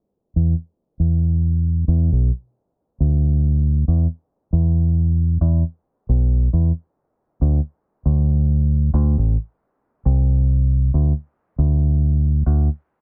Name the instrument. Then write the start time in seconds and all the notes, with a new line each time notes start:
fingered electric bass
0.36 E2
1.00 E2
1.88 E2
2.12 B1
3.00 D2
3.88 E2
4.53 E2
5.41 E2
6.09 B1
6.53 E2
7.41 D2
8.06 D2
8.94 D2
9.18 A1
10.06 C2
10.94 D2
11.58 D2
12.46 D2